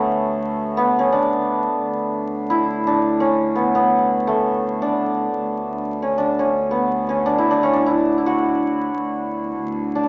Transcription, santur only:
0, 0, Header, 1, 2, 480
1, 0, Start_track
1, 0, Tempo, 500000
1, 9681, End_track
2, 0, Start_track
2, 0, Title_t, "Santur"
2, 0, Program_c, 0, 15
2, 0, Note_on_c, 0, 57, 64
2, 0, Note_on_c, 0, 59, 70
2, 0, Note_on_c, 0, 61, 61
2, 0, Note_on_c, 0, 66, 57
2, 737, Note_off_c, 0, 59, 0
2, 741, Note_on_c, 0, 59, 71
2, 944, Note_off_c, 0, 61, 0
2, 948, Note_on_c, 0, 61, 64
2, 1011, Note_off_c, 0, 66, 0
2, 1079, Note_on_c, 0, 62, 68
2, 1137, Note_off_c, 0, 61, 0
2, 2400, Note_on_c, 0, 64, 73
2, 2750, Note_off_c, 0, 62, 0
2, 2754, Note_on_c, 0, 62, 68
2, 3073, Note_on_c, 0, 61, 73
2, 3131, Note_off_c, 0, 62, 0
2, 3409, Note_off_c, 0, 59, 0
2, 3413, Note_on_c, 0, 59, 65
2, 3595, Note_off_c, 0, 59, 0
2, 3599, Note_on_c, 0, 59, 70
2, 4099, Note_off_c, 0, 57, 0
2, 4103, Note_on_c, 0, 57, 65
2, 4625, Note_on_c, 0, 62, 62
2, 4683, Note_off_c, 0, 61, 0
2, 5738, Note_off_c, 0, 64, 0
2, 5782, Note_on_c, 0, 61, 58
2, 5840, Note_off_c, 0, 62, 0
2, 5930, Note_on_c, 0, 62, 67
2, 5988, Note_off_c, 0, 61, 0
2, 6135, Note_on_c, 0, 61, 60
2, 6193, Note_off_c, 0, 62, 0
2, 6436, Note_off_c, 0, 59, 0
2, 6440, Note_on_c, 0, 59, 59
2, 6801, Note_off_c, 0, 61, 0
2, 6805, Note_on_c, 0, 61, 63
2, 6968, Note_on_c, 0, 62, 73
2, 7025, Note_off_c, 0, 61, 0
2, 7088, Note_on_c, 0, 64, 73
2, 7203, Note_off_c, 0, 62, 0
2, 7207, Note_on_c, 0, 62, 72
2, 7325, Note_on_c, 0, 61, 76
2, 7382, Note_off_c, 0, 62, 0
2, 7424, Note_on_c, 0, 62, 69
2, 7481, Note_off_c, 0, 61, 0
2, 7545, Note_off_c, 0, 64, 0
2, 7548, Note_on_c, 0, 64, 72
2, 7848, Note_off_c, 0, 64, 0
2, 7852, Note_on_c, 0, 64, 54
2, 7932, Note_on_c, 0, 66, 69
2, 8360, Note_off_c, 0, 57, 0
2, 9551, Note_off_c, 0, 62, 0
2, 9555, Note_on_c, 0, 62, 63
2, 9628, Note_off_c, 0, 62, 0
2, 9632, Note_on_c, 0, 62, 45
2, 9681, Note_off_c, 0, 59, 0
2, 9681, Note_off_c, 0, 62, 0
2, 9681, Note_off_c, 0, 64, 0
2, 9681, Note_off_c, 0, 66, 0
2, 9681, End_track
0, 0, End_of_file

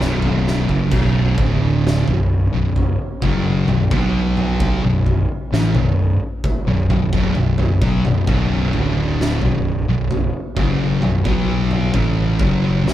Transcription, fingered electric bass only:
0, 0, Header, 1, 2, 480
1, 0, Start_track
1, 0, Key_signature, 2, "minor"
1, 0, Tempo, 918836
1, 481, Time_signature, 4, 2, 24, 8
1, 6758, End_track
2, 0, Start_track
2, 0, Title_t, "Fingered electric bass"
2, 0, Program_c, 0, 33
2, 0, Note_on_c, 0, 23, 86
2, 339, Note_off_c, 0, 23, 0
2, 359, Note_on_c, 0, 30, 84
2, 472, Note_off_c, 0, 30, 0
2, 480, Note_on_c, 0, 23, 86
2, 704, Note_off_c, 0, 23, 0
2, 720, Note_on_c, 0, 26, 87
2, 1061, Note_off_c, 0, 26, 0
2, 1082, Note_on_c, 0, 23, 85
2, 1306, Note_off_c, 0, 23, 0
2, 1324, Note_on_c, 0, 23, 83
2, 1548, Note_off_c, 0, 23, 0
2, 1684, Note_on_c, 0, 30, 89
2, 1908, Note_off_c, 0, 30, 0
2, 1923, Note_on_c, 0, 23, 75
2, 2035, Note_off_c, 0, 23, 0
2, 2044, Note_on_c, 0, 35, 89
2, 2504, Note_off_c, 0, 35, 0
2, 2526, Note_on_c, 0, 23, 78
2, 2749, Note_off_c, 0, 23, 0
2, 2887, Note_on_c, 0, 33, 102
2, 2998, Note_off_c, 0, 33, 0
2, 3005, Note_on_c, 0, 23, 76
2, 3228, Note_off_c, 0, 23, 0
2, 3484, Note_on_c, 0, 23, 95
2, 3596, Note_off_c, 0, 23, 0
2, 3604, Note_on_c, 0, 23, 81
2, 3716, Note_off_c, 0, 23, 0
2, 3725, Note_on_c, 0, 23, 98
2, 3836, Note_off_c, 0, 23, 0
2, 3848, Note_on_c, 0, 23, 77
2, 3958, Note_off_c, 0, 23, 0
2, 3967, Note_on_c, 0, 23, 77
2, 4078, Note_off_c, 0, 23, 0
2, 4085, Note_on_c, 0, 35, 93
2, 4196, Note_off_c, 0, 35, 0
2, 4208, Note_on_c, 0, 23, 68
2, 4317, Note_off_c, 0, 23, 0
2, 4323, Note_on_c, 0, 23, 101
2, 4547, Note_off_c, 0, 23, 0
2, 4567, Note_on_c, 0, 26, 81
2, 4904, Note_off_c, 0, 26, 0
2, 4927, Note_on_c, 0, 23, 92
2, 5148, Note_off_c, 0, 23, 0
2, 5165, Note_on_c, 0, 23, 84
2, 5386, Note_off_c, 0, 23, 0
2, 5521, Note_on_c, 0, 30, 98
2, 5743, Note_off_c, 0, 30, 0
2, 5760, Note_on_c, 0, 23, 87
2, 5872, Note_off_c, 0, 23, 0
2, 5878, Note_on_c, 0, 35, 99
2, 6217, Note_off_c, 0, 35, 0
2, 6237, Note_on_c, 0, 33, 104
2, 6460, Note_off_c, 0, 33, 0
2, 6476, Note_on_c, 0, 30, 90
2, 6699, Note_off_c, 0, 30, 0
2, 6716, Note_on_c, 0, 23, 93
2, 6758, Note_off_c, 0, 23, 0
2, 6758, End_track
0, 0, End_of_file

